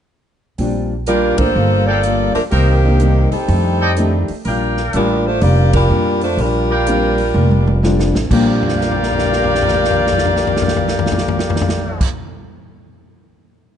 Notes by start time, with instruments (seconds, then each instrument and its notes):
0.58 upright bass A#1, steel-string acoustic guitar A#2 G3 D4 F4, grand piano C4 D4 F4 G4, open hi-hat
1.06 steel-string acoustic guitar A#2 G3 D4 F4, saxophone section G3 D4 F4 A#4, trumpet section A#4 D5 F5 G5, closed hi-hat
1.38 upright bass A1, grand piano A#3 D4 F4 A4, saxophone section A#3 F4 A4 C5, kick, ride
1.56 upright bass G1, steel-string acoustic guitar G3 A#3 F4 A4
1.87 saxophone section A#3 F4 A4 D5, trumpet section A4 A#4 F5 G5
2.03 steel-string acoustic guitar G3 A#3 F4 A4, closed hi-hat
2.35 saxophone section F3 A3 D4 A#4, muted upright bass stroke, open hi-hat
2.51 upright bass C2, steel-string acoustic guitar C3 G3 A#3 D#4, saxophone section D#3 A#3 C4 G4, trumpet section A#4 C5 D#5 G5, open hi-hat
2.84 grand piano A#3 D4 D#4 G4
3.00 steel-string acoustic guitar C3 G3 A#3 D#4, closed hi-hat
3.32 saxophone section G3 C4 D#4 A4, muted upright bass stroke, open hi-hat
3.48 upright bass F2, steel-string acoustic guitar F2 D#3 A3 D4, open hi-hat
3.81 trumpet section A4 D5 D#5 G5
3.97 steel-string acoustic guitar F2 D#3 A3 D4, grand piano A3 D4 D#4 G4, closed hi-hat
4.28 muted upright bass stroke, open hi-hat
4.45 upright bass A#1, steel-string acoustic guitar A#2 G3 D4, trumpet section A#4 D5 F5 G5, open hi-hat
4.49 steel-string acoustic guitar F4
4.77 snare
4.93 upright bass A1, steel-string acoustic guitar A#2 G3 D4 F4, saxophone section G3 D4 F4 A#4, closed hi-hat
5.27 saxophone section A3 D4 F4 C5
5.41 upright bass F1, steel-string acoustic guitar A#2 G3 D4 F4, saxophone section A#3 F4 G4 D5, open hi-hat
5.73 saxophone section G3 D4 F4 A#4, kick, ride
5.90 upright bass F2, steel-string acoustic guitar A#2 G3 D4 F4
6.21 saxophone section A3 D4 F4 C5, open hi-hat
6.37 upright bass A#1, steel-string acoustic guitar A#2 G3 D4 F4, saxophone section G3 D4 F4 A#4, open hi-hat
6.70 trumpet section A#4 D5 F5 G5
6.86 steel-string acoustic guitar A#2 G3 D4 F4, grand piano C4 D4 F4 G4, closed hi-hat
7.18 open hi-hat
7.34 upright bass F1, steel-string acoustic guitar A#2 G3 D4 F4, high tom
7.51 high tom
7.67 high tom
7.82 steel-string acoustic guitar A#2 G3 D4 F4, grand piano C4 D4 F4 A4, snare
7.99 snare
8.14 upright bass A1, snare
8.29 upright bass A#1, steel-string acoustic guitar A#2 G3, grand piano A#2 A#3 C4 D4, saxophone section A#3 F4 G4 D5, trumpet section A#4 D5 F5 G5, kick, crash
8.34 steel-string acoustic guitar D4 F4, grand piano G4
8.63 floor tom
8.68 snare
8.74 floor tom
8.80 grand piano A#4, snare
8.88 grand piano D5, floor tom
8.96 grand piano G5
9.03 grand piano A#5, snare
9.12 grand piano D6, floor tom
9.18 snare
9.24 grand piano G6, floor tom
9.33 snare
9.38 grand piano A#6
9.44 floor tom
9.55 snare
9.62 floor tom
9.68 snare
9.74 floor tom
9.84 snare
9.91 floor tom
10.07 snare
10.12 floor tom
10.18 snare
10.25 floor tom
10.36 snare
10.47 floor tom
10.56 snare
10.62 floor tom
10.68 snare
10.77 floor tom
10.88 snare
10.99 floor tom
11.06 snare
11.12 floor tom
11.18 snare
11.28 floor tom
11.39 snare
11.50 floor tom
11.56 snare
11.61 floor tom
11.69 snare
12.01 kick, crash